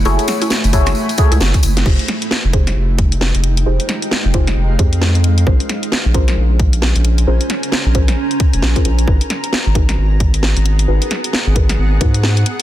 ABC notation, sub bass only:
X:1
M:4/4
L:1/16
Q:"Swing 16ths" 1/4=133
K:Fm
V:1 name="Sub bass" clef=bass
_G,,, z4 G,,,3 z3 D,, G,,, z G,,,2 | F,,, z4 F,,,3 F,,,4- F,,, F,,,3 | F,,, z4 F,,,3 F,,,2 F,,6 | B,,, z4 B,,,3 B,,,4- B,,, B,,,3 |
B,,, z4 B,,,3 z3 F,,, B,,, z B,,,2 | A,,, z4 A,,,3 A,,,4- A,,, A,,,3 | A,,, z4 A,,,3 A,,,2 A,,4 z2 |]